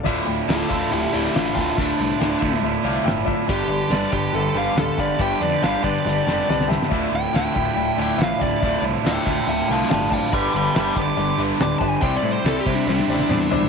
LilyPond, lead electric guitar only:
\new Staff \with { instrumentName = "Lead electric guitar" } { \time 4/4 \key d \dorian \tempo 4 = 140 r4 <f' a'>8 <f' a'>8 <e' g'>8 <e' g'>8 <d' f'>8 <d' f'>8 | d'2 r2 | g'4 d''8 g'8 a'8 f''8 a'8 d''8 | g''8 d''8 f''8 d''2 r8 |
r8 g''8 g''4. g''8 f''8 d''8~ | d''8 r8 <e'' g''>8 <e'' g''>8 <e'' g''>8 <f'' a''>8 <f'' a''>8 <f'' a''>8 | <b'' d'''>8 <b'' d'''>8 <b'' d'''>8 d'''4 r8 \tuplet 3/2 { d'''8 a''8 gis''8 } | \tuplet 3/2 { g''8 d''8 c''8 a'8 g'8 d'8 } d'2 | }